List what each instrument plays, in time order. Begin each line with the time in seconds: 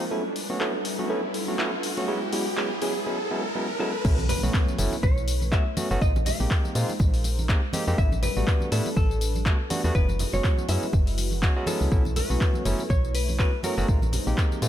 Already playing: riser
0.11 tine electric piano F#3 A3 B3 C#4 E4, analog synth pad G3 D4 A4 B4, fm electric piano A4
0.36 open hi-hat
0.50 tine electric piano F#3 A3 B3 C#4 F#4
0.60 tine electric piano F#3 A3 B3 C#4 E4, fm electric piano A4, clap
0.85 open hi-hat
0.99 tine electric piano F#3 A3 B3 C#4 F#4
1.10 tine electric piano F#3 A3 B3 C#4 E4, fm electric piano A4
1.34 open hi-hat
1.48 tine electric piano F#3 A3 B3 C#4 F#4
1.59 tine electric piano F#3 A3 B3 C#4 E4, fm electric piano A4, clap
1.83 open hi-hat
1.97 tine electric piano F#3 A3 B3 C#4 F#4, open hi-hat
2.08 tine electric piano F#3 G#3 B3 C#4 E4, analog synth pad G#3 E4 F#4, fm electric piano G#4
2.33 tine electric piano F#3 G#3 B3 C#4 E4, fm electric piano G#4, open hi-hat
2.57 tine electric piano F#3 G#3 B3 C#4 E4, fm electric piano G#4, clap
2.82 tine electric piano F#3 G#3 B3 C#4 E4, fm electric piano G#4, open hi-hat
3.06 tine electric piano F#3 G#3 B3 C#4 E4
3.31 tine electric piano F#3 G#3 B3 C#4 E4
3.55 tine electric piano F#3 G#3 B3 C#4 E4
3.80 tine electric piano F#3 G#3 B3 C#4 E4, hollow-body jazz guitar A4
4.05 fm bass B1, tine electric piano F#3 A3 B3 C#4 E4, analog synth pad A3 E4 B4 C#5, kick, crash, tambourine, impact
4.19 tambourine, high conga
4.29 hollow-body jazz guitar B4, open hi-hat, tambourine, low conga
4.43 fm bass B1, tine electric piano F#3 A3 B3 C#4 F#4, tambourine
4.54 kick, clap, tambourine
4.68 tambourine, high conga
4.78 fm bass F#1, tine electric piano F#3 A3 B3 C#4 E4, open hi-hat, tambourine
4.92 tambourine, muted conga
5.03 fm bass B1, hollow-body jazz guitar C#5, kick, tambourine, high conga
5.18 tambourine
5.28 open hi-hat, tambourine
5.42 tambourine, high conga
5.52 tine electric piano F#3 A3 B3 C#4 F#4, hollow-body jazz guitar E5, kick, clap, tambourine
5.77 tine electric piano F#3 A3 B3 C#4 F#4, open hi-hat, tambourine, muted conga, high conga
5.91 fm bass F#1, tine electric piano F#3 A3 B3 C#4 F#4, tambourine
6.01 fm bass A#1, analog synth pad G#3 D#4 A#4 C5, tine electric piano A#3 C4 D#4, hollow-body jazz guitar D#5, kick, tambourine
6.16 tambourine, high conga
6.26 hollow-body jazz guitar F5, open hi-hat, tambourine, low conga
6.40 fm bass A#1, tine electric piano G#3 A#3 C4 D#4 G4, tambourine
6.51 kick, clap, tambourine
6.64 tambourine, high conga
6.75 fm bass A#2, tine electric piano G#3 A#3 C4 D#4 F4, open hi-hat, tambourine
6.89 tambourine, muted conga
6.99 fm bass A#1, kick, tambourine, muted conga, high conga
7.14 open hi-hat, tambourine
7.24 open hi-hat, tambourine, muted conga
7.39 tambourine, high conga
7.49 tine electric piano G#3 A#3 C4 D#4 G4, kick, clap, tambourine
7.73 tine electric piano G#3 A#3 C4 D#4 G4, open hi-hat, tambourine, high conga
7.87 fm bass F2, tine electric piano G#3 A#3 C4 D#4 G4, tambourine
7.98 fm bass A1, tine electric piano G3 A3 B3 D4 E4, analog synth pad G3 D4 A4 B4, hollow-body jazz guitar E5, kick, tambourine
8.12 tambourine, high conga
8.23 hollow-body jazz guitar B4, open hi-hat, tambourine, low conga
8.37 fm bass A1, tine electric piano G3 A3 B3 D4 F#4, tambourine
8.47 kick, clap, tambourine
8.61 tambourine, high conga
8.72 fm bass A2, tine electric piano G3 A3 B3 D4 E4, hollow-body jazz guitar A4, open hi-hat, tambourine
8.86 tambourine, muted conga
8.97 fm bass A1, hollow-body jazz guitar A4, kick, tambourine, high conga
9.11 tambourine
9.21 open hi-hat, tambourine
9.35 tambourine, high conga
9.46 tine electric piano G3 A3 B3 D4 F#4, kick, clap, tambourine
9.70 tine electric piano G3 A3 B3 D4 F#4, open hi-hat, tambourine, muted conga, high conga
9.84 fm bass E2, tine electric piano G3 A3 B3 D4 F#4, tambourine
9.95 fm bass F#1, tine electric piano F#3 G#3 E4, analog synth pad G#3 E4 F#4 B4, hollow-body jazz guitar B4, kick, tambourine
10.09 tambourine, high conga
10.19 open hi-hat, tambourine, low conga
10.33 fm bass F#1, tine electric piano F#3 G#3 B3 C#4 F#4, hollow-body jazz guitar C#5, tambourine
10.44 kick, clap, tambourine
10.57 tambourine, high conga
10.69 fm bass F#2, tine electric piano F#3 G#3 B3 C#4 E4, hollow-body jazz guitar E5, open hi-hat, tambourine
10.83 tambourine, muted conga
10.93 fm bass F#1, kick, tambourine, muted conga, high conga
11.07 open hi-hat, tambourine
11.18 open hi-hat, tambourine, muted conga
11.31 tambourine, high conga
11.42 tine electric piano F#3 G#3 B3 C#4 F#4, kick, clap, tambourine
11.56 tine electric piano F#3 G#3 B3 C#4 F#4
11.66 tine electric piano F#3 G#3 B3 C#4 E4, hollow-body jazz guitar A4, open hi-hat, tambourine, high conga
11.81 fm bass C#2, tambourine
11.92 fm bass B1, tine electric piano F#3 A3 B3 C#4 E4, analog synth pad A3 C#5, kick, tambourine
12.05 tambourine, high conga
12.16 hollow-body jazz guitar B4, open hi-hat, tambourine, low conga
12.30 fm bass B1, tine electric piano F#3 A3 B3 C#4 F#4, tambourine
12.41 kick, clap, tambourine
12.54 tambourine, high conga
12.65 fm bass F#1, tine electric piano F#3 A3 B3 C#4 E4, open hi-hat, tambourine
12.72 hollow-body jazz guitar A4
12.79 tambourine, muted conga
12.90 fm bass B1, hollow-body jazz guitar C#5, kick, tambourine, high conga
13.04 tambourine
13.15 hollow-body jazz guitar B4, open hi-hat, tambourine
13.29 tambourine, high conga
13.39 tine electric piano F#3 A3 B3 C#4 F#4, hollow-body jazz guitar B4, kick, clap, tambourine
13.63 tine electric piano F#3 A3 B3 C#4 F#4, hollow-body jazz guitar A#4, open hi-hat, tambourine, muted conga, high conga
13.78 fm bass F#1, tine electric piano F#3 A3 B3 C#4 F#4, tambourine
13.88 fm bass A#1, tine electric piano G#3 A#3 C4 D#4, analog synth pad G#3 D#4 A#4 C5, kick, tambourine
14.02 tambourine, high conga
14.13 open hi-hat, tambourine, low conga
14.27 fm bass A#1, tine electric piano G#3 A#3 C4 D#4 G4, tambourine
14.38 kick, clap, tambourine
14.52 tambourine, high conga
14.62 fm bass A#2, tine electric piano G#3 A#3 C4 D#4 F4, open hi-hat, tambourine